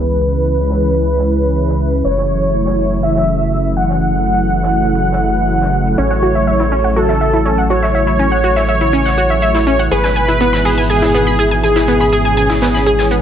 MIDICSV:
0, 0, Header, 1, 8, 480
1, 0, Start_track
1, 0, Tempo, 491803
1, 76, Time_signature, 4, 2, 24, 8
1, 12900, End_track
2, 0, Start_track
2, 0, Title_t, "Supersaw synth"
2, 0, Program_c, 0, 81
2, 0, Note_on_c, 0, 71, 107
2, 1901, Note_off_c, 0, 71, 0
2, 1995, Note_on_c, 0, 73, 109
2, 2861, Note_off_c, 0, 73, 0
2, 2956, Note_on_c, 0, 76, 102
2, 3581, Note_off_c, 0, 76, 0
2, 3676, Note_on_c, 0, 78, 102
2, 5741, Note_off_c, 0, 78, 0
2, 5836, Note_on_c, 0, 73, 104
2, 6701, Note_off_c, 0, 73, 0
2, 6796, Note_on_c, 0, 69, 100
2, 7421, Note_off_c, 0, 69, 0
2, 7515, Note_on_c, 0, 73, 108
2, 9581, Note_off_c, 0, 73, 0
2, 9675, Note_on_c, 0, 71, 107
2, 10541, Note_off_c, 0, 71, 0
2, 10636, Note_on_c, 0, 68, 103
2, 11261, Note_off_c, 0, 68, 0
2, 11355, Note_on_c, 0, 68, 103
2, 12900, Note_off_c, 0, 68, 0
2, 12900, End_track
3, 0, Start_track
3, 0, Title_t, "Synth pluck"
3, 0, Program_c, 1, 84
3, 0, Note_on_c, 1, 71, 92
3, 1901, Note_off_c, 1, 71, 0
3, 1996, Note_on_c, 1, 73, 94
3, 2861, Note_off_c, 1, 73, 0
3, 2956, Note_on_c, 1, 76, 94
3, 3581, Note_off_c, 1, 76, 0
3, 3676, Note_on_c, 1, 78, 91
3, 5741, Note_off_c, 1, 78, 0
3, 5835, Note_on_c, 1, 73, 98
3, 6701, Note_off_c, 1, 73, 0
3, 6796, Note_on_c, 1, 69, 94
3, 7421, Note_off_c, 1, 69, 0
3, 7516, Note_on_c, 1, 73, 91
3, 9581, Note_off_c, 1, 73, 0
3, 9675, Note_on_c, 1, 71, 98
3, 10541, Note_off_c, 1, 71, 0
3, 10636, Note_on_c, 1, 68, 93
3, 11261, Note_off_c, 1, 68, 0
3, 11355, Note_on_c, 1, 68, 91
3, 12900, Note_off_c, 1, 68, 0
3, 12900, End_track
4, 0, Start_track
4, 0, Title_t, "Synth arpeggio sound"
4, 0, Program_c, 2, 84
4, 5836, Note_on_c, 2, 61, 96
4, 5886, Note_off_c, 2, 61, 0
4, 5958, Note_on_c, 2, 78, 72
4, 6007, Note_off_c, 2, 78, 0
4, 6076, Note_on_c, 2, 66, 101
4, 6126, Note_off_c, 2, 66, 0
4, 6198, Note_on_c, 2, 76, 75
4, 6227, Note_off_c, 2, 76, 0
4, 6316, Note_on_c, 2, 76, 82
4, 6391, Note_off_c, 2, 76, 0
4, 6438, Note_on_c, 2, 64, 78
4, 6467, Note_off_c, 2, 64, 0
4, 6556, Note_on_c, 2, 61, 97
4, 6606, Note_off_c, 2, 61, 0
4, 6678, Note_on_c, 2, 78, 75
4, 6727, Note_off_c, 2, 78, 0
4, 6796, Note_on_c, 2, 66, 104
4, 6846, Note_off_c, 2, 66, 0
4, 6918, Note_on_c, 2, 76, 73
4, 6947, Note_off_c, 2, 76, 0
4, 7036, Note_on_c, 2, 76, 74
4, 7111, Note_off_c, 2, 76, 0
4, 7157, Note_on_c, 2, 64, 76
4, 7187, Note_off_c, 2, 64, 0
4, 7276, Note_on_c, 2, 61, 97
4, 7326, Note_off_c, 2, 61, 0
4, 7397, Note_on_c, 2, 78, 77
4, 7446, Note_off_c, 2, 78, 0
4, 7516, Note_on_c, 2, 66, 96
4, 7566, Note_off_c, 2, 66, 0
4, 7637, Note_on_c, 2, 76, 73
4, 7667, Note_off_c, 2, 76, 0
4, 7756, Note_on_c, 2, 76, 81
4, 7831, Note_off_c, 2, 76, 0
4, 7877, Note_on_c, 2, 64, 76
4, 7907, Note_off_c, 2, 64, 0
4, 7996, Note_on_c, 2, 61, 97
4, 8046, Note_off_c, 2, 61, 0
4, 8117, Note_on_c, 2, 78, 72
4, 8166, Note_off_c, 2, 78, 0
4, 8236, Note_on_c, 2, 66, 100
4, 8286, Note_off_c, 2, 66, 0
4, 8357, Note_on_c, 2, 76, 78
4, 8387, Note_off_c, 2, 76, 0
4, 8476, Note_on_c, 2, 76, 76
4, 8551, Note_off_c, 2, 76, 0
4, 8598, Note_on_c, 2, 64, 75
4, 8627, Note_off_c, 2, 64, 0
4, 8716, Note_on_c, 2, 61, 104
4, 8766, Note_off_c, 2, 61, 0
4, 8838, Note_on_c, 2, 78, 72
4, 8886, Note_off_c, 2, 78, 0
4, 8956, Note_on_c, 2, 66, 99
4, 9006, Note_off_c, 2, 66, 0
4, 9078, Note_on_c, 2, 76, 79
4, 9107, Note_off_c, 2, 76, 0
4, 9196, Note_on_c, 2, 76, 82
4, 9271, Note_off_c, 2, 76, 0
4, 9317, Note_on_c, 2, 64, 75
4, 9347, Note_off_c, 2, 64, 0
4, 9436, Note_on_c, 2, 61, 99
4, 9486, Note_off_c, 2, 61, 0
4, 9558, Note_on_c, 2, 78, 70
4, 9606, Note_off_c, 2, 78, 0
4, 9676, Note_on_c, 2, 68, 97
4, 9726, Note_off_c, 2, 68, 0
4, 9797, Note_on_c, 2, 80, 73
4, 9827, Note_off_c, 2, 80, 0
4, 9915, Note_on_c, 2, 80, 73
4, 9991, Note_off_c, 2, 80, 0
4, 10037, Note_on_c, 2, 64, 73
4, 10066, Note_off_c, 2, 64, 0
4, 10156, Note_on_c, 2, 59, 101
4, 10206, Note_off_c, 2, 59, 0
4, 10277, Note_on_c, 2, 83, 81
4, 10326, Note_off_c, 2, 83, 0
4, 10396, Note_on_c, 2, 68, 101
4, 10446, Note_off_c, 2, 68, 0
4, 10517, Note_on_c, 2, 80, 78
4, 10547, Note_off_c, 2, 80, 0
4, 10636, Note_on_c, 2, 80, 81
4, 10711, Note_off_c, 2, 80, 0
4, 10757, Note_on_c, 2, 64, 76
4, 10787, Note_off_c, 2, 64, 0
4, 10876, Note_on_c, 2, 59, 101
4, 10926, Note_off_c, 2, 59, 0
4, 10997, Note_on_c, 2, 83, 76
4, 11046, Note_off_c, 2, 83, 0
4, 11115, Note_on_c, 2, 68, 99
4, 11166, Note_off_c, 2, 68, 0
4, 11237, Note_on_c, 2, 80, 75
4, 11266, Note_off_c, 2, 80, 0
4, 11355, Note_on_c, 2, 80, 72
4, 11431, Note_off_c, 2, 80, 0
4, 11477, Note_on_c, 2, 64, 76
4, 11506, Note_off_c, 2, 64, 0
4, 11595, Note_on_c, 2, 59, 103
4, 11646, Note_off_c, 2, 59, 0
4, 11717, Note_on_c, 2, 83, 75
4, 11766, Note_off_c, 2, 83, 0
4, 11835, Note_on_c, 2, 68, 100
4, 11886, Note_off_c, 2, 68, 0
4, 11957, Note_on_c, 2, 80, 74
4, 11986, Note_off_c, 2, 80, 0
4, 12075, Note_on_c, 2, 80, 81
4, 12151, Note_off_c, 2, 80, 0
4, 12197, Note_on_c, 2, 64, 78
4, 12226, Note_off_c, 2, 64, 0
4, 12315, Note_on_c, 2, 59, 96
4, 12366, Note_off_c, 2, 59, 0
4, 12437, Note_on_c, 2, 83, 77
4, 12486, Note_off_c, 2, 83, 0
4, 12556, Note_on_c, 2, 68, 97
4, 12606, Note_off_c, 2, 68, 0
4, 12677, Note_on_c, 2, 80, 76
4, 12707, Note_off_c, 2, 80, 0
4, 12796, Note_on_c, 2, 59, 78
4, 12846, Note_off_c, 2, 59, 0
4, 12900, End_track
5, 0, Start_track
5, 0, Title_t, "Analog synth pad"
5, 0, Program_c, 3, 89
5, 0, Note_on_c, 3, 49, 82
5, 0, Note_on_c, 3, 52, 72
5, 0, Note_on_c, 3, 56, 74
5, 0, Note_on_c, 3, 64, 90
5, 76, Note_on_c, 3, 61, 77
5, 1957, Note_off_c, 3, 56, 0
5, 1977, Note_off_c, 3, 61, 0
5, 1996, Note_on_c, 3, 54, 75
5, 1996, Note_on_c, 3, 57, 72
5, 9637, Note_off_c, 3, 49, 0
5, 9637, Note_off_c, 3, 52, 0
5, 9637, Note_off_c, 3, 54, 0
5, 9637, Note_off_c, 3, 57, 0
5, 9637, Note_off_c, 3, 64, 0
5, 9676, Note_on_c, 3, 44, 81
5, 9676, Note_on_c, 3, 47, 75
5, 9676, Note_on_c, 3, 52, 75
5, 9676, Note_on_c, 3, 59, 74
5, 9676, Note_on_c, 3, 64, 90
5, 11577, Note_off_c, 3, 59, 0
5, 11596, Note_on_c, 3, 61, 76
5, 12900, Note_off_c, 3, 44, 0
5, 12900, Note_off_c, 3, 47, 0
5, 12900, Note_off_c, 3, 52, 0
5, 12900, Note_off_c, 3, 61, 0
5, 12900, Note_off_c, 3, 64, 0
5, 12900, End_track
6, 0, Start_track
6, 0, Title_t, "Analog synth bass"
6, 0, Program_c, 4, 38
6, 0, Note_on_c, 4, 37, 91
6, 1972, Note_off_c, 4, 37, 0
6, 1996, Note_on_c, 4, 30, 92
6, 5812, Note_off_c, 4, 30, 0
6, 5836, Note_on_c, 4, 33, 90
6, 9652, Note_off_c, 4, 33, 0
6, 9676, Note_on_c, 4, 32, 93
6, 12900, Note_off_c, 4, 32, 0
6, 12900, End_track
7, 0, Start_track
7, 0, Title_t, "Swell"
7, 0, Program_c, 5, 103
7, 12556, Note_on_c, 5, 60, 77
7, 12900, Note_off_c, 5, 60, 0
7, 12900, End_track
8, 0, Start_track
8, 0, Title_t, "Drums"
8, 73, Note_on_c, 9, 82, 85
8, 76, Note_on_c, 9, 42, 73
8, 171, Note_off_c, 9, 82, 0
8, 174, Note_off_c, 9, 42, 0
8, 193, Note_on_c, 9, 42, 43
8, 290, Note_off_c, 9, 42, 0
8, 313, Note_on_c, 9, 82, 58
8, 316, Note_on_c, 9, 42, 76
8, 411, Note_off_c, 9, 82, 0
8, 414, Note_off_c, 9, 42, 0
8, 438, Note_on_c, 9, 42, 51
8, 535, Note_off_c, 9, 42, 0
8, 552, Note_on_c, 9, 82, 86
8, 556, Note_on_c, 9, 42, 75
8, 649, Note_off_c, 9, 82, 0
8, 654, Note_off_c, 9, 42, 0
8, 683, Note_on_c, 9, 38, 50
8, 781, Note_off_c, 9, 38, 0
8, 790, Note_on_c, 9, 82, 61
8, 796, Note_on_c, 9, 42, 79
8, 888, Note_off_c, 9, 82, 0
8, 894, Note_off_c, 9, 42, 0
8, 918, Note_on_c, 9, 42, 51
8, 1015, Note_off_c, 9, 42, 0
8, 1031, Note_on_c, 9, 82, 74
8, 1036, Note_on_c, 9, 42, 80
8, 1129, Note_off_c, 9, 82, 0
8, 1133, Note_off_c, 9, 42, 0
8, 1155, Note_on_c, 9, 38, 50
8, 1252, Note_off_c, 9, 38, 0
8, 1276, Note_on_c, 9, 42, 76
8, 1281, Note_on_c, 9, 82, 66
8, 1373, Note_off_c, 9, 42, 0
8, 1378, Note_off_c, 9, 82, 0
8, 1397, Note_on_c, 9, 42, 48
8, 1495, Note_off_c, 9, 42, 0
8, 1516, Note_on_c, 9, 42, 76
8, 1518, Note_on_c, 9, 82, 81
8, 1613, Note_off_c, 9, 42, 0
8, 1615, Note_off_c, 9, 82, 0
8, 1640, Note_on_c, 9, 38, 32
8, 1737, Note_off_c, 9, 38, 0
8, 1756, Note_on_c, 9, 42, 78
8, 1757, Note_on_c, 9, 82, 67
8, 1853, Note_off_c, 9, 42, 0
8, 1854, Note_off_c, 9, 82, 0
8, 1876, Note_on_c, 9, 42, 43
8, 1877, Note_off_c, 9, 42, 0
8, 1877, Note_on_c, 9, 42, 51
8, 1975, Note_off_c, 9, 42, 0
8, 1990, Note_on_c, 9, 82, 81
8, 1996, Note_on_c, 9, 42, 72
8, 2088, Note_off_c, 9, 82, 0
8, 2093, Note_off_c, 9, 42, 0
8, 2125, Note_on_c, 9, 38, 38
8, 2222, Note_off_c, 9, 38, 0
8, 2236, Note_on_c, 9, 42, 72
8, 2237, Note_on_c, 9, 82, 61
8, 2333, Note_off_c, 9, 42, 0
8, 2335, Note_off_c, 9, 82, 0
8, 2356, Note_on_c, 9, 42, 39
8, 2357, Note_off_c, 9, 42, 0
8, 2357, Note_on_c, 9, 42, 48
8, 2455, Note_off_c, 9, 42, 0
8, 2476, Note_on_c, 9, 42, 73
8, 2478, Note_on_c, 9, 82, 82
8, 2573, Note_off_c, 9, 42, 0
8, 2576, Note_off_c, 9, 82, 0
8, 2594, Note_on_c, 9, 38, 47
8, 2692, Note_off_c, 9, 38, 0
8, 2716, Note_on_c, 9, 42, 77
8, 2719, Note_on_c, 9, 46, 80
8, 2814, Note_off_c, 9, 42, 0
8, 2816, Note_off_c, 9, 46, 0
8, 2955, Note_on_c, 9, 82, 78
8, 2956, Note_on_c, 9, 42, 74
8, 3053, Note_off_c, 9, 82, 0
8, 3054, Note_off_c, 9, 42, 0
8, 3081, Note_on_c, 9, 38, 49
8, 3179, Note_off_c, 9, 38, 0
8, 3196, Note_on_c, 9, 42, 71
8, 3196, Note_on_c, 9, 82, 60
8, 3293, Note_off_c, 9, 82, 0
8, 3294, Note_off_c, 9, 42, 0
8, 3318, Note_on_c, 9, 42, 47
8, 3416, Note_off_c, 9, 42, 0
8, 3434, Note_on_c, 9, 82, 76
8, 3436, Note_on_c, 9, 42, 73
8, 3531, Note_off_c, 9, 82, 0
8, 3534, Note_off_c, 9, 42, 0
8, 3676, Note_on_c, 9, 42, 73
8, 3678, Note_on_c, 9, 82, 77
8, 3774, Note_off_c, 9, 42, 0
8, 3775, Note_off_c, 9, 82, 0
8, 3795, Note_on_c, 9, 38, 39
8, 3798, Note_on_c, 9, 42, 49
8, 3893, Note_off_c, 9, 38, 0
8, 3896, Note_off_c, 9, 42, 0
8, 3916, Note_on_c, 9, 82, 60
8, 3917, Note_on_c, 9, 42, 72
8, 4013, Note_off_c, 9, 82, 0
8, 4014, Note_off_c, 9, 42, 0
8, 4156, Note_on_c, 9, 42, 73
8, 4159, Note_on_c, 9, 82, 66
8, 4254, Note_off_c, 9, 42, 0
8, 4257, Note_off_c, 9, 82, 0
8, 4278, Note_on_c, 9, 42, 49
8, 4376, Note_off_c, 9, 42, 0
8, 4393, Note_on_c, 9, 82, 81
8, 4396, Note_on_c, 9, 42, 73
8, 4490, Note_off_c, 9, 82, 0
8, 4494, Note_off_c, 9, 42, 0
8, 4518, Note_on_c, 9, 38, 50
8, 4518, Note_on_c, 9, 42, 32
8, 4615, Note_off_c, 9, 42, 0
8, 4616, Note_off_c, 9, 38, 0
8, 4627, Note_on_c, 9, 82, 64
8, 4636, Note_on_c, 9, 42, 71
8, 4725, Note_off_c, 9, 82, 0
8, 4734, Note_off_c, 9, 42, 0
8, 4758, Note_on_c, 9, 42, 49
8, 4856, Note_off_c, 9, 42, 0
8, 4870, Note_on_c, 9, 82, 74
8, 4876, Note_on_c, 9, 42, 71
8, 4967, Note_off_c, 9, 82, 0
8, 4974, Note_off_c, 9, 42, 0
8, 5001, Note_on_c, 9, 38, 52
8, 5098, Note_off_c, 9, 38, 0
8, 5115, Note_on_c, 9, 82, 67
8, 5116, Note_on_c, 9, 42, 73
8, 5212, Note_off_c, 9, 82, 0
8, 5214, Note_off_c, 9, 42, 0
8, 5238, Note_on_c, 9, 42, 46
8, 5335, Note_off_c, 9, 42, 0
8, 5349, Note_on_c, 9, 82, 82
8, 5356, Note_on_c, 9, 42, 67
8, 5446, Note_off_c, 9, 82, 0
8, 5454, Note_off_c, 9, 42, 0
8, 5478, Note_on_c, 9, 38, 38
8, 5576, Note_off_c, 9, 38, 0
8, 5596, Note_on_c, 9, 42, 70
8, 5596, Note_on_c, 9, 82, 60
8, 5693, Note_off_c, 9, 82, 0
8, 5694, Note_off_c, 9, 42, 0
8, 5718, Note_on_c, 9, 42, 49
8, 5719, Note_off_c, 9, 42, 0
8, 5719, Note_on_c, 9, 42, 42
8, 5817, Note_off_c, 9, 42, 0
8, 5842, Note_on_c, 9, 82, 87
8, 5940, Note_off_c, 9, 82, 0
8, 5956, Note_on_c, 9, 38, 43
8, 6053, Note_off_c, 9, 38, 0
8, 6076, Note_on_c, 9, 42, 71
8, 6080, Note_on_c, 9, 82, 69
8, 6173, Note_off_c, 9, 42, 0
8, 6177, Note_off_c, 9, 82, 0
8, 6191, Note_on_c, 9, 42, 44
8, 6289, Note_off_c, 9, 42, 0
8, 6316, Note_on_c, 9, 42, 73
8, 6317, Note_on_c, 9, 82, 85
8, 6413, Note_off_c, 9, 42, 0
8, 6414, Note_off_c, 9, 82, 0
8, 6444, Note_on_c, 9, 38, 51
8, 6542, Note_off_c, 9, 38, 0
8, 6556, Note_on_c, 9, 42, 70
8, 6557, Note_on_c, 9, 46, 82
8, 6653, Note_off_c, 9, 42, 0
8, 6655, Note_off_c, 9, 46, 0
8, 6677, Note_on_c, 9, 42, 50
8, 6775, Note_off_c, 9, 42, 0
8, 6796, Note_on_c, 9, 42, 74
8, 6796, Note_on_c, 9, 82, 78
8, 6893, Note_off_c, 9, 42, 0
8, 6894, Note_off_c, 9, 82, 0
8, 6917, Note_on_c, 9, 38, 47
8, 7014, Note_off_c, 9, 38, 0
8, 7036, Note_on_c, 9, 42, 74
8, 7038, Note_on_c, 9, 82, 61
8, 7133, Note_off_c, 9, 42, 0
8, 7135, Note_off_c, 9, 82, 0
8, 7157, Note_on_c, 9, 42, 48
8, 7255, Note_off_c, 9, 42, 0
8, 7275, Note_on_c, 9, 42, 70
8, 7278, Note_on_c, 9, 82, 81
8, 7373, Note_off_c, 9, 42, 0
8, 7376, Note_off_c, 9, 82, 0
8, 7515, Note_on_c, 9, 42, 72
8, 7518, Note_on_c, 9, 82, 65
8, 7613, Note_off_c, 9, 42, 0
8, 7615, Note_off_c, 9, 82, 0
8, 7640, Note_on_c, 9, 38, 52
8, 7737, Note_off_c, 9, 38, 0
8, 7755, Note_on_c, 9, 42, 74
8, 7757, Note_on_c, 9, 82, 85
8, 7853, Note_off_c, 9, 42, 0
8, 7855, Note_off_c, 9, 82, 0
8, 7874, Note_on_c, 9, 42, 42
8, 7972, Note_off_c, 9, 42, 0
8, 7993, Note_on_c, 9, 82, 63
8, 7995, Note_on_c, 9, 42, 78
8, 8090, Note_off_c, 9, 82, 0
8, 8093, Note_off_c, 9, 42, 0
8, 8117, Note_on_c, 9, 42, 51
8, 8215, Note_off_c, 9, 42, 0
8, 8231, Note_on_c, 9, 82, 91
8, 8235, Note_on_c, 9, 42, 75
8, 8329, Note_off_c, 9, 82, 0
8, 8333, Note_off_c, 9, 42, 0
8, 8356, Note_on_c, 9, 38, 53
8, 8453, Note_off_c, 9, 38, 0
8, 8473, Note_on_c, 9, 82, 60
8, 8475, Note_on_c, 9, 42, 75
8, 8571, Note_off_c, 9, 82, 0
8, 8573, Note_off_c, 9, 42, 0
8, 8597, Note_on_c, 9, 42, 51
8, 8694, Note_off_c, 9, 42, 0
8, 8715, Note_on_c, 9, 42, 74
8, 8719, Note_on_c, 9, 82, 82
8, 8813, Note_off_c, 9, 42, 0
8, 8816, Note_off_c, 9, 82, 0
8, 8845, Note_on_c, 9, 38, 45
8, 8942, Note_off_c, 9, 38, 0
8, 8948, Note_on_c, 9, 82, 70
8, 8955, Note_on_c, 9, 42, 77
8, 9046, Note_off_c, 9, 82, 0
8, 9053, Note_off_c, 9, 42, 0
8, 9077, Note_on_c, 9, 42, 48
8, 9175, Note_off_c, 9, 42, 0
8, 9186, Note_on_c, 9, 82, 80
8, 9196, Note_on_c, 9, 42, 72
8, 9283, Note_off_c, 9, 82, 0
8, 9293, Note_off_c, 9, 42, 0
8, 9313, Note_on_c, 9, 38, 37
8, 9411, Note_off_c, 9, 38, 0
8, 9436, Note_on_c, 9, 42, 75
8, 9436, Note_on_c, 9, 82, 61
8, 9533, Note_off_c, 9, 42, 0
8, 9534, Note_off_c, 9, 82, 0
8, 9554, Note_on_c, 9, 42, 43
8, 9558, Note_off_c, 9, 42, 0
8, 9558, Note_on_c, 9, 42, 52
8, 9655, Note_off_c, 9, 42, 0
8, 9676, Note_on_c, 9, 42, 74
8, 9683, Note_on_c, 9, 82, 78
8, 9773, Note_off_c, 9, 42, 0
8, 9781, Note_off_c, 9, 82, 0
8, 9800, Note_on_c, 9, 38, 40
8, 9898, Note_off_c, 9, 38, 0
8, 9916, Note_on_c, 9, 42, 78
8, 9920, Note_on_c, 9, 82, 56
8, 10013, Note_off_c, 9, 42, 0
8, 10017, Note_off_c, 9, 82, 0
8, 10037, Note_on_c, 9, 42, 52
8, 10040, Note_off_c, 9, 42, 0
8, 10040, Note_on_c, 9, 42, 42
8, 10137, Note_off_c, 9, 42, 0
8, 10156, Note_on_c, 9, 42, 79
8, 10157, Note_on_c, 9, 82, 89
8, 10253, Note_off_c, 9, 42, 0
8, 10255, Note_off_c, 9, 82, 0
8, 10281, Note_on_c, 9, 38, 51
8, 10379, Note_off_c, 9, 38, 0
8, 10395, Note_on_c, 9, 42, 80
8, 10395, Note_on_c, 9, 46, 72
8, 10493, Note_off_c, 9, 42, 0
8, 10493, Note_off_c, 9, 46, 0
8, 10517, Note_on_c, 9, 42, 52
8, 10615, Note_off_c, 9, 42, 0
8, 10635, Note_on_c, 9, 42, 82
8, 10639, Note_on_c, 9, 82, 87
8, 10733, Note_off_c, 9, 42, 0
8, 10737, Note_off_c, 9, 82, 0
8, 10765, Note_on_c, 9, 38, 54
8, 10862, Note_off_c, 9, 38, 0
8, 10875, Note_on_c, 9, 42, 76
8, 10884, Note_on_c, 9, 82, 69
8, 10973, Note_off_c, 9, 42, 0
8, 10982, Note_off_c, 9, 82, 0
8, 10997, Note_on_c, 9, 42, 51
8, 11094, Note_off_c, 9, 42, 0
8, 11112, Note_on_c, 9, 82, 87
8, 11115, Note_on_c, 9, 42, 76
8, 11210, Note_off_c, 9, 82, 0
8, 11213, Note_off_c, 9, 42, 0
8, 11355, Note_on_c, 9, 42, 79
8, 11363, Note_on_c, 9, 82, 61
8, 11453, Note_off_c, 9, 42, 0
8, 11460, Note_off_c, 9, 82, 0
8, 11476, Note_on_c, 9, 38, 53
8, 11477, Note_on_c, 9, 42, 53
8, 11574, Note_off_c, 9, 38, 0
8, 11574, Note_off_c, 9, 42, 0
8, 11593, Note_on_c, 9, 82, 76
8, 11595, Note_on_c, 9, 42, 78
8, 11691, Note_off_c, 9, 82, 0
8, 11693, Note_off_c, 9, 42, 0
8, 11717, Note_on_c, 9, 42, 36
8, 11720, Note_off_c, 9, 42, 0
8, 11720, Note_on_c, 9, 42, 46
8, 11818, Note_off_c, 9, 42, 0
8, 11834, Note_on_c, 9, 82, 64
8, 11835, Note_on_c, 9, 42, 81
8, 11932, Note_off_c, 9, 82, 0
8, 11933, Note_off_c, 9, 42, 0
8, 11957, Note_on_c, 9, 42, 54
8, 12054, Note_off_c, 9, 42, 0
8, 12074, Note_on_c, 9, 82, 88
8, 12075, Note_on_c, 9, 42, 78
8, 12172, Note_off_c, 9, 82, 0
8, 12173, Note_off_c, 9, 42, 0
8, 12204, Note_on_c, 9, 38, 54
8, 12302, Note_off_c, 9, 38, 0
8, 12312, Note_on_c, 9, 82, 70
8, 12315, Note_on_c, 9, 42, 84
8, 12322, Note_on_c, 9, 38, 106
8, 12409, Note_off_c, 9, 82, 0
8, 12413, Note_off_c, 9, 42, 0
8, 12420, Note_off_c, 9, 38, 0
8, 12437, Note_on_c, 9, 42, 56
8, 12441, Note_on_c, 9, 38, 45
8, 12535, Note_off_c, 9, 42, 0
8, 12538, Note_off_c, 9, 38, 0
8, 12551, Note_on_c, 9, 82, 91
8, 12556, Note_on_c, 9, 42, 82
8, 12649, Note_off_c, 9, 82, 0
8, 12653, Note_off_c, 9, 42, 0
8, 12677, Note_on_c, 9, 38, 52
8, 12677, Note_on_c, 9, 42, 36
8, 12775, Note_off_c, 9, 38, 0
8, 12775, Note_off_c, 9, 42, 0
8, 12793, Note_on_c, 9, 82, 80
8, 12796, Note_on_c, 9, 42, 79
8, 12891, Note_off_c, 9, 82, 0
8, 12894, Note_off_c, 9, 42, 0
8, 12900, End_track
0, 0, End_of_file